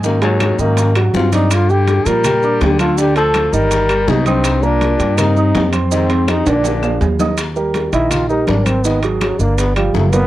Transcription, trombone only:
\new Staff \with { instrumentName = "Trombone" } { \time 4/4 \key ees \major \tempo 4 = 164 bes8 ges4 bes4 r8 f'8 ees'8 | f'8 g'4 bes'4. g'8 f'8 | g'8 a'4 bes'4. ees'8 c'8~ | c'8 d'4. ees'4. r8 |
c'4 ees'8 d'4. r4 | r4. fes'8 f'8 ees'8 d'8 c'8 | ces'8 ees8 ges8 bes8 ces'8 g8 a8 ces'8 | }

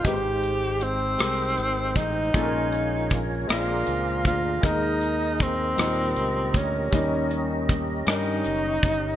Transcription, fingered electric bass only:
\new Staff \with { instrumentName = "Fingered electric bass" } { \clef bass \time 6/8 \key ees \mixolydian \tempo 4. = 52 aes,,4. c,8 aes,,8 a,,8 | bes,,4. bes,,8 des,8 d,8 | ees,4. ees,8 des,8 d,8 | ees,4. g,8 ges,,8 g,,8 | }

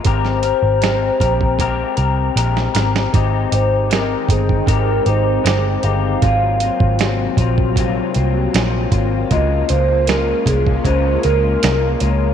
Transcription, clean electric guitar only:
\new Staff \with { instrumentName = "Clean electric guitar" } { \time 4/4 \key aes \major \tempo 4 = 78 <aes c' g' bes'>8 <c' g' bes'>8 <aes c' g' bes'>8 <c' g' bes'>8 <aes c' g' bes'>8 <c' g' bes'>8 <aes c' g' bes'>8 <c' g' bes'>8 | <aes c' ees' g'>8 <c' ees' g'>8 <aes c' ees' g'>8 <c' ees'>8 <aes c' ees' g'>8 <c' ees' g'>8 <aes c' ees' g'>8 <c' ees' g'>8 | <aes, ges c' f'>8 <ges c' f'>8 <aes, ges c' f'>8 <ges c' f'>8 <aes, ges c' f'>8 <ges c' f'>8 <aes, ges c' f'>8 <ges c' f'>8 | <des aes bes f'>8 <aes bes f'>8 <des aes bes f'>8 <aes bes f'>8 <des aes bes f'>8 <aes bes f'>8 <aes bes f'>8 <aes bes f'>8 | }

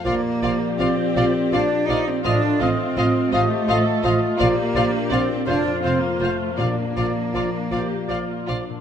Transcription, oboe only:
\new Staff \with { instrumentName = "Oboe" } { \time 6/8 \key bes \major \tempo 4. = 54 d''8 d''8 d''8 d''8 d''8 d''8 | ees''8 ees''8 ees''8 ees''8 ees''8 ees''8 | d''8 d''8 d''8 c''8 c''8 c''8 | d''8 d''8 d''8 d''8 d''8 d''8 | }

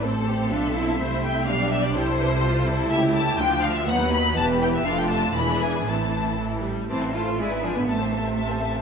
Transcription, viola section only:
\new Staff \with { instrumentName = "Viola section" } { \time 2/4 \key a \minor \tempo 4 = 123 << { c'4 d'8 e'8 | c'4 d'4 | e'4 f'8 e'8~ | e'4 d'4 |
b4 b4 | d'4 d'4 | c'4 e8 g8 | e8 a8 gis8 f16 d16 |
c2 | } \\ { c'2 | a4 g4 | g2 | a4 f4 |
fis4 e4 | a4 e4 | e4 r4 | r2 |
r2 | } >> }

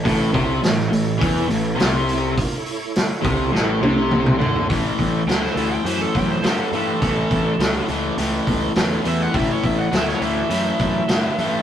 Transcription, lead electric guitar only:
\new Staff \with { instrumentName = "Lead electric guitar" } { \time 4/4 \key a \mixolydian \tempo 4 = 103 r1 | r1 | r4 g''16 c''16 a'16 g''16 c''16 a'16 g''16 c''16 a'8 a'8~ | a'4. r2 e''16 fis''16 |
e''16 cis''16 e''16 fis''16 e''16 cis''16 e''2~ e''8 | }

